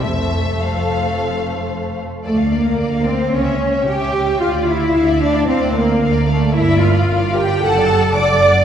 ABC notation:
X:1
M:4/4
L:1/16
Q:1/4=112
K:F
V:1 name="Violin section"
e4 f8- f2 z2 | [K:Dm] d f d f d f d f ^c e c e c e c e | f d f d f d f d f d f d f d f d | B d B d B d B d ^f d f d f d f d |]
V:2 name="Violin section"
[Ac]12- [Ac]2 z2 | [K:Dm] A2 B4 c2 ^c4 g4 | f2 e4 d2 c2 B4 A2 | e2 f4 g2 a4 d'4 |]
V:3 name="Cello section"
F,,12- F,,2 z2 | [K:Dm] A,2 B,4 C2 ^C4 G4 | F2 E4 D2 C2 B,4 A,2 | E2 F4 G2 A4 d4 |]
V:4 name="Viola section"
A,12- A,2 z2 | [K:Dm] A,2 B,4 C2 ^C4 G4 | F2 E4 D2 C2 B,4 A,2 | E2 F4 G2 A4 d4 |]
V:5 name="Double bass section" clef=bass
F,,,12- F,,,2 z2 | [K:Dm] D,,4 D,,4 ^C,,4 C,,4 | D,,4 D,,4 D,,4 D,,4 | G,,,4 G,,,4 ^F,,,4 F,,,4 |]